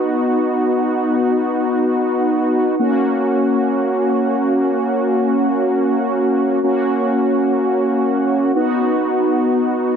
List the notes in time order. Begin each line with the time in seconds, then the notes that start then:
Already playing: B3 D#4 F#4
2.79 A#3 C#4 F#4
6.64 A#3 C#4 F#4
8.55 B3 D#4 F#4